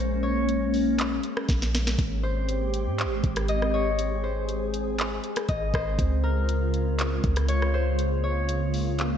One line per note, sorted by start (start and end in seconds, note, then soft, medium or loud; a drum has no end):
0.00 1.20 A#1 loud
0.00 5.95 G#3 medium
0.00 1.95 A#3 medium
0.00 1.95 C#4 medium
0.00 0.36 A#4 medium
0.00 0.29 C5 medium
0.23 2.14 C#5 medium
0.49 closed hi-hat medium
0.74 open hi-hat soft
0.99 clap loud
0.99 closed hi-hat medium
1.23 closed hi-hat medium
1.37 cross-stick loud
1.49 1.97 A#1 loud
1.49 kick medium
1.49 snare medium
1.49 closed hi-hat medium
1.62 snare medium
1.75 snare medium
1.87 snare medium
1.98 2.88 G#1 loud
1.98 7.95 C4 medium
1.98 3.97 G4 medium
1.98 kick loud
1.98 closed hi-hat medium
2.23 3.80 C5 medium
2.49 closed hi-hat medium
2.74 closed hi-hat medium
2.86 3.06 G#2 loud
2.99 clap loud
2.99 closed hi-hat medium
3.05 3.23 G#1 loud
3.24 5.20 G#1 loud
3.24 kick medium
3.24 closed hi-hat soft
3.36 cross-stick loud
3.36 closed hi-hat medium
3.48 5.27 D#5 medium
3.48 closed hi-hat medium
3.62 cross-stick medium
3.74 4.30 C#5 medium
3.99 5.97 G#4 medium
3.99 closed hi-hat medium
4.24 5.73 C5 medium
4.49 closed hi-hat medium
4.74 closed hi-hat medium
4.99 clap loud
4.99 closed hi-hat medium
5.24 closed hi-hat soft
5.36 cross-stick loud
5.36 closed hi-hat medium
5.49 5.73 G#1 loud
5.49 7.27 D#5 medium
5.49 kick medium
5.49 closed hi-hat medium
5.74 5.98 G#1 loud
5.74 7.54 C5 medium
5.74 kick medium
5.74 cross-stick loud
5.99 7.20 C#2 loud
5.99 9.18 C#3 medium
5.99 9.18 G#3 medium
5.99 9.18 F4 medium
5.99 kick loud
5.99 closed hi-hat medium
6.23 8.36 A#4 medium
6.49 closed hi-hat medium
6.74 closed hi-hat medium
6.99 clap loud
6.99 closed hi-hat medium
7.24 9.18 C#2 loud
7.24 kick medium
7.24 closed hi-hat soft
7.36 cross-stick medium
7.36 closed hi-hat medium
7.48 7.80 C#5 medium
7.48 closed hi-hat medium
7.62 cross-stick medium
7.74 8.30 C5 medium
7.99 9.18 A#3 medium
7.99 closed hi-hat medium
8.24 9.18 C#5 medium
8.49 closed hi-hat medium
8.74 open hi-hat soft
8.99 clap loud
8.99 closed hi-hat medium